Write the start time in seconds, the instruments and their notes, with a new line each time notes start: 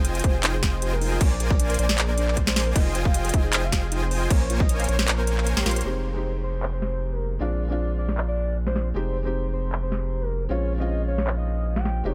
Already playing: sub bass F1, supersaw synth F4 C5 D#5 G5 G#5, soft synth lead C5
0.05 synth arpeggio sound C5, closed hi-hat
0.15 synth arpeggio sound D#5, closed hi-hat
0.19 closed hi-hat
0.24 sub bass F1, synth arpeggio sound G4, soft synth lead C5, supersaw synth C5 D#5, kick, closed hi-hat
0.34 synth arpeggio sound G#4
0.43 synth arpeggio sound D#4, clap, closed hi-hat
0.54 synth arpeggio sound G#4, soft synth lead C5
0.63 synth arpeggio sound C5, kick, snare, closed hi-hat
0.73 synth arpeggio sound D#5
0.82 synth arpeggio sound G4, closed hi-hat
0.92 synth arpeggio sound G#4, soft synth lead A#4
1.01 synth arpeggio sound D#4, open hi-hat
1.12 synth arpeggio sound G#4
1.21 sub bass A#1, supersaw synth A#3 A#4 C5 D5 G#5, synth arpeggio sound C5, soft synth lead D5, kick, closed hi-hat, crash
1.31 synth arpeggio sound D5
1.40 synth arpeggio sound G#4, closed hi-hat
1.50 synth arpeggio sound A#4, soft synth lead D5, kick
1.60 synth arpeggio sound D4, closed hi-hat
1.70 synth arpeggio sound A#4, closed hi-hat
1.74 closed hi-hat
1.79 sub bass A#1, supersaw synth A#3 A#4 C5 D5 G#5, synth arpeggio sound C5, soft synth lead D5, closed hi-hat
1.89 synth arpeggio sound D5, snare
1.98 synth arpeggio sound G#4, clap, closed hi-hat
2.09 synth arpeggio sound A#4, soft synth lead D5
2.18 synth arpeggio sound D4, closed hi-hat
2.28 synth arpeggio sound A#4, clap
2.37 synth arpeggio sound C5, kick, closed hi-hat
2.47 soft synth lead C5, synth arpeggio sound D5, snare
2.56 synth arpeggio sound G#4, snare, open hi-hat
2.67 synth arpeggio sound A#4
2.76 sub bass F1, synth arpeggio sound D#4, supersaw synth F4 C5 D#5 G5 G#5, soft synth lead D#5, kick, closed hi-hat, crash
2.86 synth arpeggio sound G#4
2.95 synth arpeggio sound C5, closed hi-hat
3.05 synth arpeggio sound D#5, soft synth lead F5, kick
3.14 synth arpeggio sound G4, closed hi-hat
3.25 synth arpeggio sound G#4, closed hi-hat
3.29 closed hi-hat
3.34 sub bass F1, synth arpeggio sound D#4, supersaw synth F4 C5 D#5 G5 G#5, soft synth lead D#5, kick, closed hi-hat
3.44 synth arpeggio sound G#4
3.53 synth arpeggio sound C5, clap, closed hi-hat
3.63 synth arpeggio sound D#5, soft synth lead F5
3.72 synth arpeggio sound G4, kick, snare, closed hi-hat
3.83 synth arpeggio sound G#4
3.92 synth arpeggio sound D#4, closed hi-hat
4.02 synth arpeggio sound G#4, soft synth lead C5
4.11 synth arpeggio sound C5, open hi-hat
4.21 synth arpeggio sound D#5
4.30 sub bass A#1, supersaw synth A#3 A#4 C5 C#5, synth arpeggio sound A#4, soft synth lead C#5, kick, closed hi-hat, crash
4.41 synth arpeggio sound C5
4.50 synth arpeggio sound F4, closed hi-hat
4.60 synth arpeggio sound C5, soft synth lead D#5, kick
4.69 synth arpeggio sound C#5, closed hi-hat
4.80 synth arpeggio sound F5, closed hi-hat
4.84 closed hi-hat
4.88 sub bass A#1, supersaw synth A#3 A#4 C5 C#5 G#5, synth arpeggio sound A#4, soft synth lead C#5, closed hi-hat
4.99 synth arpeggio sound C5, snare
5.08 synth arpeggio sound F4, clap, closed hi-hat
5.18 soft synth lead A#4, synth arpeggio sound C5
5.27 synth arpeggio sound C#5, closed hi-hat
5.38 synth arpeggio sound F5, clap
5.47 synth arpeggio sound A#4, closed hi-hat
5.57 sub bass A#1, supersaw synth A#3 A#4 C5 C#5 C6, soft synth lead G4, synth arpeggio sound C5, snare
5.66 sub bass A#1, supersaw synth A#3 A#4 C5 C#5 C6, synth arpeggio sound F4, snare, closed hi-hat
5.71 closed hi-hat
5.76 synth arpeggio sound C5, closed hi-hat
5.81 felt piano G#3, closed hi-hat
5.85 sub bass F1, felt piano C4 D#4 G4, soft synth lead C5, crash
6.13 felt piano G#3 C4 D#4, soft synth lead C5
6.17 felt piano G4
6.43 soft synth lead C5
6.63 clap
6.73 soft synth lead C5
6.82 snare
7.12 soft synth lead A#4
7.39 sub bass A#1, felt piano G#3 C4 D4 F4, soft synth lead D5
7.68 felt piano G#3 C4 D4, soft synth lead D5
7.72 felt piano F4
7.98 soft synth lead D5
8.09 snare
8.18 clap
8.28 soft synth lead D5
8.67 soft synth lead C5, snare
8.76 snare
8.94 sub bass F1, felt piano G#3 C4 D#4 G4, soft synth lead C5
9.23 felt piano G#3 C4 D#4 G4, soft synth lead C5
9.53 soft synth lead C5
9.72 clap
9.83 soft synth lead C5
9.92 snare
10.21 soft synth lead A#4
10.49 sub bass A#1, felt piano G#3 C4 C#4 F4, soft synth lead C#5
10.78 felt piano G#3 C4 C#4 F4, soft synth lead D#5
11.08 soft synth lead C#5
11.18 snare
11.27 clap
11.38 soft synth lead D#5
11.76 soft synth lead G5, snare
11.85 snare
12.04 sub bass F1, felt piano G#3 C4 D#4 G4, soft synth lead C5